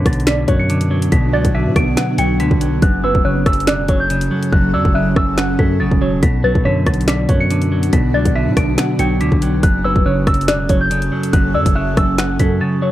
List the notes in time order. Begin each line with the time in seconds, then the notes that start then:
Already playing: D3 F#3 B3 D4 F#4 C#5
0.06 B1 B2 A6, kick, cross-stick, closed hi-hat
0.13 closed hi-hat
0.20 closed hi-hat
0.27 D5 B6, finger snap, snare, closed hi-hat
0.48 F#2 F#3 C#5, kick, closed hi-hat
0.60 C#7
0.70 D3, closed hi-hat
0.81 closed hi-hat
0.91 F#3
1.02 closed hi-hat
1.12 B1 B2 B6, kick, closed hi-hat
1.33 C#2 F#3 D5 A6
1.45 B1, kick, closed hi-hat
1.55 D3 E5 B6
1.66 B2
1.76 B1 B2 D7, kick, cross-stick, closed hi-hat
1.97 F#5, finger snap, snare, closed hi-hat
2.18 B1 F#3 G5 C#7, closed hi-hat
2.40 D2 D3 B6, closed hi-hat
2.51 B1, kick
2.61 F#3, closed hi-hat
2.82 F#1 F#2 F#3 C#4 A4 F#6, kick, closed hi-hat
3.04 F#1 F#3 B4 E6
3.15 E1, kick
3.25 F#1 C#3 C#5 F#6
3.46 F#1 F#2 E6, kick, cross-stick, closed hi-hat
3.53 closed hi-hat
3.60 closed hi-hat
3.67 E1 D5 F#6, finger snap, snare, closed hi-hat
3.88 F#1 F#3 C#5, kick, closed hi-hat
4.00 G6
4.10 C#3, closed hi-hat
4.21 closed hi-hat
4.31 F#3
4.43 closed hi-hat
4.53 F#1 F#2 F#6, kick
4.74 F#2 F#3 D5 E6
4.85 F#1, kick
4.94 C#3 E5 F#6
5.16 F#1 F#2 E6, kick, cross-stick
5.38 F#5 F#6, finger snap, snare
5.59 F#2 F#3 A4 B6, kick
5.80 G1 C#3 A6
5.91 E1, kick
6.01 F#3 C#5
6.23 B1 B2 B3 D4 F#4 B6, kick, closed hi-hat
6.44 B1 F#3 B4 A6
6.55 B1, kick
6.65 F#2 D3 C#5 B6
6.86 B1 B2 A6, kick, cross-stick, closed hi-hat
6.94 closed hi-hat
7.01 closed hi-hat
7.08 D5 B6, finger snap, snare, closed hi-hat
7.29 F#2 F#3 C#5, kick, closed hi-hat
7.40 C#7
7.50 D3, closed hi-hat
7.62 closed hi-hat
7.72 F#3
7.83 closed hi-hat
7.93 B1 B2 B6, kick, closed hi-hat
8.14 C#2 F#3 D5 A6
8.25 B1, kick, closed hi-hat
8.36 D3 E5 B6
8.47 B2
8.57 B1 B2 D7, kick, cross-stick, closed hi-hat
8.78 F#5, finger snap, snare, closed hi-hat
8.99 B1 F#3 G5 C#7, closed hi-hat
9.21 D2 D3 B6, closed hi-hat
9.32 B1, kick
9.42 F#3, closed hi-hat
9.63 F#1 F#2 F#3 C#4 A4 F#6, kick, closed hi-hat
9.84 F#1 F#3 B4 E6
9.96 E1, kick
10.06 F#1 C#3 C#5 F#6
10.27 F#1 F#2 E6, kick, cross-stick, closed hi-hat
10.34 closed hi-hat
10.41 closed hi-hat
10.48 E1 D5 F#6, finger snap, snare, closed hi-hat
10.69 F#1 F#3 C#5, kick, closed hi-hat
10.81 G6
10.91 C#3, closed hi-hat
11.02 closed hi-hat
11.12 F#3
11.23 closed hi-hat
11.33 F#1 F#2 F#6, kick, closed hi-hat
11.54 F#2 F#3 D5 E6
11.66 F#1, kick, closed hi-hat
11.75 C#3 E5 F#6
11.97 F#1 F#2 E6, kick, cross-stick, closed hi-hat
12.18 F#5 F#6, finger snap, snare, closed hi-hat
12.39 F#2 F#3 A4 B6, kick, closed hi-hat
12.61 C#3 A6
12.82 F#3 C#5